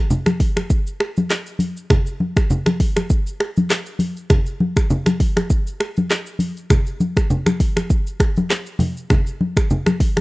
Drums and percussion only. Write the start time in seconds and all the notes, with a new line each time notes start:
0.10 low conga, shaker
0.26 finger snap, cross-stick, high conga, shaker
0.40 kick, open hi-hat
0.57 finger snap, cross-stick, high conga, shaker
0.70 kick, shaker
0.87 shaker
1.00 finger snap, cross-stick
1.17 high conga, shaker
1.30 finger snap, cross-stick, clap, shaker
1.46 shaker
1.59 open hi-hat, high conga, shaker
1.77 shaker
1.90 finger snap, kick, cross-stick, low conga, shaker
2.06 shaker
2.20 high conga
2.37 finger snap, kick, cross-stick, shaker
2.50 low conga, shaker
2.66 finger snap, cross-stick, high conga, shaker
2.80 kick, open hi-hat
2.96 finger snap, cross-stick, high conga, shaker
3.10 kick, shaker
3.27 shaker
3.40 finger snap, cross-stick
3.57 high conga, shaker
3.70 finger snap, cross-stick, clap, shaker
3.86 shaker
3.99 open hi-hat, high conga, shaker
4.17 shaker
4.30 finger snap, kick, cross-stick, low conga, shaker
4.46 shaker
4.60 high conga
4.76 finger snap, kick, cross-stick, shaker
4.90 low conga, shaker
5.06 finger snap, cross-stick, high conga, shaker
5.20 kick, open hi-hat
5.37 finger snap, cross-stick, high conga, shaker
5.50 kick, shaker
5.67 shaker
5.80 finger snap, cross-stick
5.97 high conga, shaker
6.10 finger snap, cross-stick, clap, shaker
6.26 shaker
6.39 open hi-hat, high conga, shaker
6.57 shaker
6.70 finger snap, kick, cross-stick, low conga, shaker
6.87 shaker
7.00 high conga, shaker
7.17 finger snap, kick, cross-stick, shaker
7.30 low conga, shaker
7.46 finger snap, cross-stick, high conga, shaker
7.60 kick, open hi-hat, shaker
7.77 finger snap, cross-stick, high conga, shaker
7.90 kick, shaker
8.07 shaker
8.20 finger snap, kick, cross-stick, shaker
8.37 high conga, shaker
8.50 finger snap, cross-stick, clap, shaker
8.66 shaker
8.79 open hi-hat, high conga, low conga, shaker
8.97 shaker
9.10 finger snap, kick, cross-stick, low conga, shaker
9.27 shaker
9.41 high conga
9.57 finger snap, kick, cross-stick, shaker
9.70 low conga, shaker
9.86 finger snap, cross-stick, high conga, shaker
10.00 kick, open hi-hat
10.17 finger snap, cross-stick, high conga, shaker